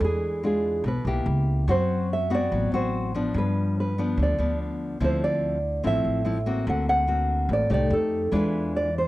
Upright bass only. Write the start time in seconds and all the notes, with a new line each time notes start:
0.00 E2
0.84 B1
1.05 B1
1.26 C#2
1.68 F#2
2.52 A1
2.72 A1
3.34 G2
4.17 D2
4.38 D2
5.00 D2
5.84 A1
6.04 A1
6.67 D2
7.49 A1
7.70 C2
7.90 F2
8.32 E2